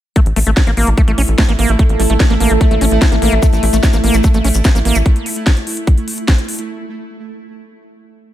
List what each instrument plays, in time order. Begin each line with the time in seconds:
0.16 synth texture A3 E4, acid bass A3, ambient pad A4, kick, closed hi-hat
0.26 analog synth bass A1, closed hi-hat
0.36 analog synth bass A1, acid bass A3, open hi-hat
0.47 analog synth bass A1, acid bass A3, closed hi-hat
0.57 ambient pad A5, kick, snare, closed hi-hat
0.67 analog synth bass A1, acid bass A#3, closed hi-hat
0.77 analog synth bass A1, acid bass A#3, open hi-hat
0.87 analog synth bass A1, acid bass A3, closed hi-hat
0.92 ambient pad E5
0.98 acid bass A3, kick, closed hi-hat
1.08 analog synth bass A1, acid bass A3, closed hi-hat
1.18 analog synth bass A#1, acid bass C#4, open hi-hat
1.28 analog synth bass A1, closed hi-hat
1.38 acid bass A3, kick, snare, closed hi-hat
1.49 analog synth bass A1, acid bass A#3, closed hi-hat
1.59 analog synth bass A1, acid bass A#3, open hi-hat
1.69 analog synth bass A1, acid bass A3, closed hi-hat
1.79 acid bass A3, kick, closed hi-hat
1.89 analog synth bass A1, closed hi-hat
2.00 analog synth bass A1, acid bass A3, open hi-hat
2.10 analog synth bass A1, acid bass A3, closed hi-hat
2.20 kick, snare, closed hi-hat
2.30 analog synth bass A1, acid bass A#3, closed hi-hat
2.40 analog synth bass A1, acid bass A#3, open hi-hat
2.51 analog synth bass A1, acid bass A3, closed hi-hat
2.61 acid bass A3, kick, closed hi-hat
2.71 analog synth bass A1, acid bass A3, closed hi-hat
2.81 analog synth bass A1, acid bass C#4, open hi-hat
2.91 analog synth bass A1, closed hi-hat
3.02 acid bass A3, kick, snare, closed hi-hat
3.12 analog synth bass A1, acid bass A#3, closed hi-hat
3.22 analog synth bass A1, acid bass A#3, open hi-hat
3.32 analog synth bass A1, acid bass A3, closed hi-hat
3.42 acid bass A3, kick, closed hi-hat, maracas
3.53 analog synth bass A1, closed hi-hat, maracas
3.63 analog synth bass A1, acid bass A3, open hi-hat
3.73 analog synth bass A1, acid bass A3, closed hi-hat, maracas
3.83 kick, snare, closed hi-hat, maracas
3.93 analog synth bass A1, acid bass A#3, closed hi-hat, maracas
4.04 analog synth bass A1, acid bass A#3, open hi-hat
4.14 analog synth bass A1, acid bass A3, closed hi-hat, maracas
4.24 acid bass A3, kick, closed hi-hat, maracas
4.34 analog synth bass A1, acid bass A3, closed hi-hat, maracas
4.44 analog synth bass A#1, acid bass C#4, open hi-hat
4.54 analog synth bass A1, closed hi-hat, maracas
4.64 acid bass A3, kick, snare, closed hi-hat, maracas
4.75 analog synth bass A1, acid bass A#3, closed hi-hat, maracas
4.85 analog synth bass A1, acid bass A#3, open hi-hat
4.95 analog synth bass A1, acid bass A3, closed hi-hat, maracas
5.06 kick, closed hi-hat
5.16 closed hi-hat
5.26 open hi-hat
5.36 closed hi-hat
5.47 kick, snare, closed hi-hat
5.57 closed hi-hat
5.67 open hi-hat
5.77 closed hi-hat
5.87 kick, closed hi-hat
5.98 closed hi-hat
6.08 open hi-hat
6.18 closed hi-hat
6.28 kick, snare, closed hi-hat
6.38 closed hi-hat
6.49 open hi-hat
6.59 closed hi-hat